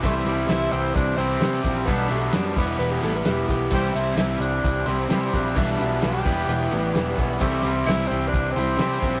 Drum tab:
HH |xxxxxxxx|xxxxxxxx|xxxxxxxx|xxxxxxxx|
SD |--o---oo|--o---o-|--o---oo|--o---oo|
BD |o---o--o|o--o---o|o---o--o|o--o---o|

HH |xxxxxxxx|
SD |--o---o-|
BD |o---o--o|